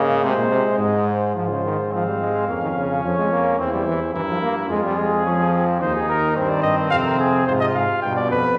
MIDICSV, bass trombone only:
0, 0, Header, 1, 2, 480
1, 0, Start_track
1, 0, Key_signature, -4, "minor"
1, 0, Tempo, 557103
1, 1169, Time_signature, 4, 2, 24, 8
1, 7398, End_track
2, 0, Start_track
2, 0, Title_t, "Bass trombone"
2, 0, Program_c, 0, 57
2, 0, Note_on_c, 0, 49, 108
2, 203, Note_on_c, 0, 48, 115
2, 216, Note_off_c, 0, 49, 0
2, 313, Note_off_c, 0, 48, 0
2, 318, Note_on_c, 0, 46, 94
2, 437, Note_off_c, 0, 46, 0
2, 442, Note_on_c, 0, 48, 93
2, 551, Note_off_c, 0, 48, 0
2, 677, Note_on_c, 0, 44, 100
2, 1155, Note_off_c, 0, 44, 0
2, 1169, Note_on_c, 0, 44, 76
2, 2104, Note_off_c, 0, 44, 0
2, 2139, Note_on_c, 0, 41, 75
2, 2609, Note_off_c, 0, 41, 0
2, 2621, Note_on_c, 0, 41, 76
2, 3089, Note_off_c, 0, 41, 0
2, 3099, Note_on_c, 0, 40, 78
2, 3574, Note_on_c, 0, 43, 80
2, 3587, Note_off_c, 0, 40, 0
2, 4050, Note_on_c, 0, 41, 78
2, 4063, Note_off_c, 0, 43, 0
2, 5003, Note_off_c, 0, 41, 0
2, 5008, Note_on_c, 0, 39, 82
2, 5475, Note_off_c, 0, 39, 0
2, 5483, Note_on_c, 0, 43, 88
2, 5714, Note_off_c, 0, 43, 0
2, 5719, Note_on_c, 0, 43, 86
2, 5951, Note_off_c, 0, 43, 0
2, 5956, Note_on_c, 0, 41, 88
2, 6426, Note_off_c, 0, 41, 0
2, 6437, Note_on_c, 0, 44, 89
2, 6674, Note_off_c, 0, 44, 0
2, 6679, Note_on_c, 0, 44, 84
2, 6787, Note_off_c, 0, 44, 0
2, 6922, Note_on_c, 0, 43, 84
2, 7162, Note_on_c, 0, 41, 83
2, 7175, Note_off_c, 0, 43, 0
2, 7397, Note_off_c, 0, 41, 0
2, 7398, End_track
0, 0, End_of_file